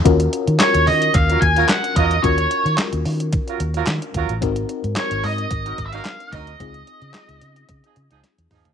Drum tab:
HH |xxxxxxoxxxxxxxxx|xxxxxxoxxxxxxxxx|xxxxxxoxxxxxxxxx|xxxxxxxxxxxxxxox|
CP |----x-------x---|----x-------x---|----x-------x---|----x-----------|
SD |----o-------o---|----o-------o---|----o-------o---|----o-------o---|
T2 |----------------|----------------|----------------|--------------o-|
FT |----------------|----------------|----------------|---------------o|
BD |o-------o-o---o-|o-------o-----o-|o-------o-o---o-|o-------o-------|